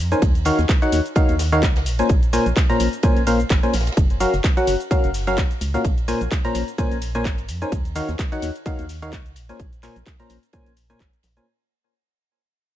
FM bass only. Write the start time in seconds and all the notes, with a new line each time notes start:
0.00 F2
0.22 D#2
0.59 D#2
0.92 D#2
1.29 D#2
1.63 C#2
1.86 A#1
2.10 A#1
2.46 A#1
2.80 A#1
3.16 A#1
3.50 G#1
3.74 A#1
3.97 F#1
4.34 F#1
4.67 F#1
5.04 F#1
5.38 C#2
5.61 C#2
5.85 A#1
6.21 A#1
6.55 A#1
6.91 A#1
7.25 G#1
7.49 F2
7.72 D#2
8.09 D#2
8.42 D#2
8.79 D#2
9.13 C#2
9.36 A#1
9.60 A#1
9.96 A#1
10.30 A#1
10.66 A#1
11.00 G#1
11.24 A#1